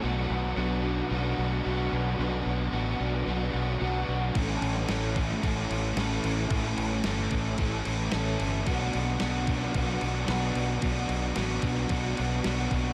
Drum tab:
CC |----------------|----------------|x-x-x-x-x-x-x-x-|x-x-x-x-x-x-x-x-|
SD |----------------|----------------|---oo--o----o---|---oo-------o---|
BD |----------------|----------------|o-----o-o-------|o-----o-o-------|

CC |x-x-x-x-x-x-x-x-|x-x-x-x-x-x-x-x-|
SD |---oo--o----o---|----o--o----o---|
BD |o-----o-o-------|o-----o-o-----o-|